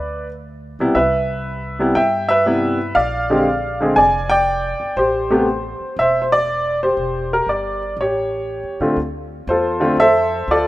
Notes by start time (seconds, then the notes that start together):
Already playing: D2 B4 D5
0.79 B1 C3 G3 B3 E4
0.95 C2 B4 E5
1.79 C3 G3 B3 E4
1.95 G2 E5 G5
2.29 B4 E5
2.46 C3 G3 B3 E4
2.95 A#1 D5 F5
3.30 D3 G#3 C4 G4
3.80 D3 G#3 C4 G#4
3.96 F1 D5 G#5
4.30 D5 G5
4.80 G1
4.96 A1 G4 C5
5.30 C3 A3 B3 G4
5.80 muted upright bass stroke
5.97 E1 E5
6.01 C5
6.22 C5
6.32 D5
6.83 G4 C5
6.97 E1
7.33 A#4
7.46 G1 D5
7.97 A1 C#5
8.02 G4
8.63 E2
8.80 A2 D3 A3 C4 F4
8.97 D2
9.47 E2 F4 A4 C5
9.80 D3 A3 C4 F4
9.97 F2 A4 E5
10.01 C5
10.48 D2 F4 A4 D5